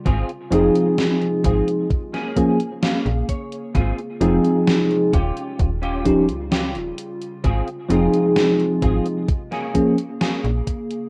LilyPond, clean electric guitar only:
\new Staff \with { instrumentName = "Clean electric guitar" } { \time 4/4 \key aes \major \tempo 4 = 65 << { r2 r8 aes''8 f''8 des''8 | r1 | r1 | } \\ { <c' f' aes'>16 r16 <c' f' aes'>8 r8 <c' f' aes'>16 r8 <bes des' aes'>16 r8 <bes des' aes'>16 r8. | <c' f' aes'>16 r16 <c' f' aes'>8 r8 <des' f' g'>8 r16 <des' f' g'>16 r8 <des' f' g'>16 r8. | <c' f' aes'>16 r16 <c' f' aes'>8 r8 <c' f' aes'>16 r8 <bes des' aes'>16 r8 <bes des' aes'>16 r8. | } >> }